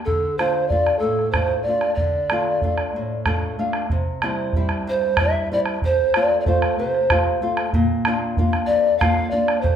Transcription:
0.05 0.68 D3 medium
0.05 0.36 A4 medium
0.05 bombo low medium
0.38 0.70 A3 soft
0.38 0.71 D4 soft
0.38 0.71 F4 medium
0.38 0.67 C5 medium
0.38 bombo rim medium
0.68 1.22 A3 soft
0.68 1.01 D5 medium
0.68 bombo low medium
0.72 1.23 D4 soft
0.72 1.23 F4 medium
0.87 bombo rim medium
0.99 1.65 A2 medium
0.99 1.33 A4 medium
1.19 bombo rim soft
1.31 1.66 A3 soft
1.31 1.67 D4 soft
1.31 1.67 F4 medium
1.31 1.62 C5 medium
1.31 bombo rim medium
1.31 bombo low medium
1.63 1.94 D5 medium
1.67 1.93 A3 soft
1.67 1.93 D4 soft
1.67 1.93 F4 soft
1.81 bombo rim medium
1.95 3.21 D5 medium
1.95 bombo rim soft
1.95 bombo low medium
2.00 2.61 D3 medium
2.30 2.62 A3 soft
2.30 2.62 D4 soft
2.30 2.62 F4 medium
2.30 bombo rim medium
2.62 3.14 A3 soft
2.62 3.14 D4 soft
2.62 3.14 F4 medium
2.62 bombo low medium
2.78 bombo rim medium
2.96 3.57 A2 medium
3.26 3.58 A3 soft
3.26 3.58 D4 soft
3.26 3.59 F4 soft
3.26 3.56 A4 medium
3.26 bombo rim medium
3.26 bombo low medium
3.42 bombo rim soft
3.59 3.84 A3 soft
3.59 3.85 D4 soft
3.59 3.85 F4 soft
3.59 3.89 F5 medium
3.73 bombo rim medium
3.90 4.53 C3 medium
3.90 bombo low medium
4.22 4.55 G3 medium
4.22 4.56 C4 soft
4.22 4.56 E4 medium
4.22 bombo rim medium
4.37 bombo rim soft
4.53 5.07 G3 medium
4.53 5.07 E4 medium
4.53 bombo low medium
4.57 5.07 C4 soft
4.69 bombo rim medium
4.87 5.49 G2 medium
4.87 5.18 C5 medium
5.01 bombo rim soft
5.17 5.50 G3 soft
5.17 5.50 C4 soft
5.17 5.49 E5 loud
5.17 bombo rim medium
5.17 bombo low medium
5.21 5.51 E4 medium
5.52 5.77 G3 soft
5.52 5.77 C4 soft
5.52 5.77 E4 medium
5.52 5.60 D5 medium
5.66 bombo rim soft
5.82 6.45 F2 medium
5.82 6.17 C5 medium
5.82 bombo low medium
6.14 6.45 A3 medium
6.14 6.46 C4 soft
6.14 6.47 F4 medium
6.14 6.40 D5 medium
6.14 bombo rim medium
6.30 bombo rim soft
6.40 6.48 D5 medium
6.46 6.97 A3 medium
6.46 6.98 C4 soft
6.46 6.98 F4 medium
6.46 6.77 C5 medium
6.46 bombo low medium
6.62 bombo rim medium
6.78 7.41 C3 medium
6.78 7.46 C5 medium
6.94 bombo rim soft
7.10 7.41 A3 soft
7.10 7.41 C4 soft
7.10 7.42 F4 medium
7.10 bombo rim medium
7.10 bombo low medium
7.42 7.67 A3 medium
7.42 7.68 C4 soft
7.42 7.68 F4 medium
7.57 bombo rim medium
7.73 8.35 A#2 medium
7.73 bombo low medium
8.05 8.37 A#3 soft
8.05 8.37 D4 soft
8.05 8.38 F4 medium
8.05 bombo rim medium
8.22 bombo rim soft
8.37 8.89 A#3 medium
8.37 8.89 D4 soft
8.37 8.89 F4 medium
8.37 bombo low medium
8.53 bombo rim medium
8.66 9.31 F2 medium
8.66 8.97 D5 medium
8.98 9.31 A#3 medium
8.98 9.31 D4 soft
8.98 9.33 F4 medium
8.98 9.32 F5 loud
8.98 bombo rim medium
8.98 bombo low medium
9.31 9.58 A#3 medium
9.31 9.58 D4 soft
9.31 9.59 F4 medium
9.31 9.63 D5 medium
9.48 bombo rim medium
9.61 9.76 F2 medium
9.61 9.76 C5 medium
9.61 bombo low medium

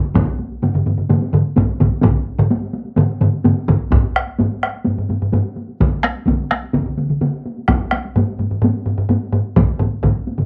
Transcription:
0.04 taiko high soft
0.14 taiko loud
0.14 taiko low-mid medium
0.14 taiko mid loud
0.14 taiko high medium
0.39 taiko high soft
0.52 taiko high soft
0.62 taiko low-mid medium
0.62 taiko mid medium
0.62 taiko high medium
0.74 taiko low-mid medium
0.74 taiko mid medium
0.74 taiko high soft
0.86 taiko low-mid medium
0.86 taiko mid medium
0.86 taiko high medium
0.97 taiko low-mid medium
0.97 taiko mid medium
0.97 taiko high soft
1.10 taiko low-mid loud
1.10 taiko mid medium
1.10 taiko high medium
1.21 taiko high medium
1.33 taiko low-mid loud
1.33 taiko mid loud
1.45 taiko high soft
1.56 taiko medium
1.56 taiko low-mid medium
1.56 taiko mid medium
1.56 taiko high medium
1.68 taiko high soft
1.80 taiko medium
1.80 taiko low-mid medium
1.80 taiko mid loud
1.80 taiko high medium
1.91 taiko high soft
2.02 taiko medium
2.02 taiko low-mid loud
2.02 taiko mid loud
2.02 taiko high medium
2.15 taiko high soft
2.38 taiko low-mid loud
2.38 taiko mid loud
2.38 taiko high soft
2.50 taiko high medium
2.62 taiko high soft
2.74 taiko high medium
2.85 taiko high soft
2.96 taiko low-mid loud
2.96 taiko mid loud
2.96 taiko high medium
3.21 taiko low-mid loud
3.21 taiko mid loud
3.21 taiko high medium
3.33 taiko high soft
3.45 taiko low-mid loud
3.45 taiko mid medium
3.45 taiko high medium
3.56 taiko high soft
3.68 taiko medium
3.68 taiko low-mid medium
3.68 taiko mid loud
3.68 taiko high medium
3.80 taiko high soft
3.91 taiko medium
3.91 taiko low-mid medium
3.91 taiko high medium
4.04 taiko high soft
4.16 taiko rim medium
4.28 taiko high soft
4.39 taiko low-mid medium
4.39 taiko high medium
4.51 taiko high soft
4.63 taiko rim medium
4.74 taiko high soft
4.85 taiko low-mid medium
4.85 taiko high medium
4.97 taiko low-mid medium
4.97 taiko high soft
5.09 taiko low-mid medium
5.09 taiko high medium
5.22 taiko low-mid medium
5.22 taiko high soft
5.33 taiko low-mid medium
5.33 taiko high medium
5.56 taiko high soft
5.69 taiko high soft
5.80 taiko medium
5.80 taiko mid medium
5.80 taiko high medium
5.93 taiko high soft
6.04 taiko rim medium
6.04 taiko high medium
6.15 taiko high soft
6.27 taiko medium
6.27 taiko mid loud
6.27 taiko high medium
6.40 taiko high soft
6.51 taiko rim medium
6.51 taiko high soft
6.63 taiko high soft
6.74 taiko medium
6.74 taiko mid medium
6.74 taiko high medium
6.86 taiko mid medium
6.86 taiko high soft
6.98 taiko mid medium
6.98 taiko high medium
7.10 taiko mid medium
7.10 taiko high soft
7.21 taiko mid medium
7.21 taiko high medium
7.46 taiko high soft
7.58 taiko high soft
7.68 taiko rim medium
7.68 taiko medium
7.68 taiko high medium
7.81 taiko high soft
7.91 taiko rim medium
7.91 taiko high soft
8.05 taiko high soft
8.16 taiko low-mid medium
8.16 taiko high medium
8.29 taiko high soft
8.39 taiko low-mid medium
8.39 taiko high soft
8.51 taiko low-mid medium
8.51 taiko high soft
8.62 taiko low-mid loud
8.62 taiko high medium
8.75 taiko high soft
8.86 taiko low-mid medium
8.86 taiko high soft
8.98 taiko low-mid medium
8.98 taiko high soft
9.09 taiko low-mid medium
9.09 taiko high medium
9.32 taiko low-mid medium
9.32 taiko high soft
9.45 taiko high soft
9.56 taiko medium
9.56 taiko low-mid medium
9.56 taiko mid loud
9.56 taiko high medium
9.69 taiko high soft
9.79 taiko low-mid medium
9.79 taiko mid medium
9.79 taiko high soft
9.93 taiko high soft
10.03 taiko medium
10.03 taiko low-mid medium
10.03 taiko mid medium
10.03 taiko high medium
10.16 taiko high soft
10.27 taiko high soft
10.38 taiko low-mid medium
10.38 taiko mid medium
10.38 taiko high soft

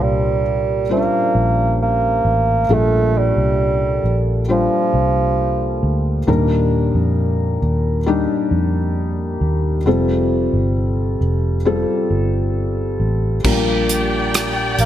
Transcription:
0.00 1.09 C2 medium
0.00 0.42 A#2 soft
0.00 0.81 G3 medium
0.00 0.91 G3 medium
0.00 0.82 D4 soft
0.00 0.82 F4 soft
0.00 0.82 A#4 medium
0.89 2.60 G3 medium
0.89 1.77 A#3 medium
0.89 0.97 C#4 soft
0.89 2.61 F4 soft
0.89 2.61 C5 medium
0.97 2.64 D4 medium
1.35 2.21 A#1 medium
1.82 2.74 A#3 medium
2.25 2.67 A1 medium
2.69 3.33 A#1 medium
2.69 4.00 A#2 soft
2.69 4.40 G3 medium
2.69 3.19 A3 medium
2.69 4.40 D4 soft
2.69 4.40 F4 soft
2.69 4.40 A4 medium
3.18 4.24 G3 medium
3.37 4.00 C2 medium
4.04 4.67 A#1 medium
4.48 5.81 F3 medium
4.48 6.19 G3 medium
4.48 6.19 D4 medium
4.48 6.19 F4 medium
4.48 6.20 C5 medium
4.94 5.79 C2 medium
5.83 6.25 D2 medium
6.27 6.91 D#2 medium
6.27 7.58 A#2 medium
6.27 7.98 G3 medium
6.27 7.98 D4 medium
6.27 7.98 D#4 medium
6.27 7.98 A#4 medium
6.95 7.58 F2 medium
7.62 8.25 D#2 medium
8.06 9.77 G3 medium
8.06 9.77 D4 medium
8.06 9.78 D#4 medium
8.06 9.78 G4 medium
8.51 9.37 F2 medium
9.41 9.83 D#2 medium
9.86 10.49 F1 medium
9.86 11.17 C3 medium
9.86 11.56 G3 medium
9.86 11.57 C4 medium
9.86 11.57 F4 medium
9.86 11.57 A4 medium
10.53 11.17 G1 medium
11.21 11.84 F1 medium
11.65 13.36 G3 medium
11.65 13.36 C4 medium
11.65 13.36 F4 medium
11.65 13.36 A4 medium
12.10 12.96 G1 medium
13.00 13.41 A1 medium
13.44 14.75 A#1 medium
13.44 14.75 A#2 medium
13.44 14.86 G3 medium
13.44 14.86 D4 medium
13.44 14.86 F4 medium
13.44 14.86 G4 medium
13.44 14.86 A#4 medium
13.44 14.86 D5 medium
13.44 14.86 G5 medium
13.44 kick medium
13.44 crash medium
13.89 closed hi-hat medium
14.34 cross-stick medium
14.34 closed hi-hat medium
14.79 14.86 A#1 medium
14.79 14.86 A#3 medium
14.79 closed hi-hat medium

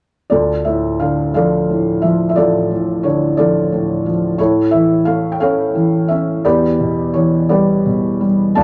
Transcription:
0.30 2.33 D2 soft
0.30 1.32 F4 soft
0.30 1.32 A4 soft
0.30 0.63 D5 soft
0.65 1.68 A2 soft
0.65 1.01 E5 soft
1.00 2.33 D3 soft
1.00 1.33 F5 soft
1.34 2.02 F3 soft
1.34 2.34 A4 soft
1.34 2.34 D5 soft
1.34 2.05 F5 medium
1.70 2.69 A2 soft
2.02 3.34 F3 soft
2.02 2.28 E5 soft
2.29 2.37 E5 soft
2.36 4.34 A1 soft
2.36 3.34 F4 soft
2.36 3.34 A4 soft
2.36 3.06 D5 soft
2.71 3.71 A2 soft
3.03 4.34 D3 soft
3.03 3.35 C#5 soft
3.37 4.04 F3 soft
3.37 4.35 F4 soft
3.37 4.35 A4 soft
3.37 4.09 D5 medium
3.72 4.37 A2 soft
4.06 4.38 F3 soft
4.38 6.41 A2 soft
4.38 5.37 E4 soft
4.38 5.37 A4 soft
4.38 4.73 C#5 medium
4.71 5.73 E3 soft
4.71 5.03 E5 medium
5.05 6.41 A3 soft
5.05 5.34 F5 medium
5.32 5.39 G5 soft
5.40 6.09 C#4 soft
5.40 6.41 A4 soft
5.40 6.41 C#5 soft
5.40 6.11 F5 medium
5.75 6.42 E3 soft
6.08 6.44 C#4 soft
6.08 6.41 E5 soft
6.45 8.52 E2 soft
6.45 7.46 G4 soft
6.45 7.46 B4 soft
6.45 7.16 D5 medium
6.80 7.84 B2 soft
7.14 8.52 E3 soft
7.14 7.50 C#5 soft
7.49 8.19 G3 soft
7.49 8.52 G4 soft
7.49 8.52 B4 soft
7.49 8.25 D5 soft
7.85 8.54 B2 soft
8.21 8.55 G3 soft
8.55 8.63 D2 soft
8.55 8.63 D5 soft
8.55 8.63 F5 soft
8.55 8.63 A5 medium

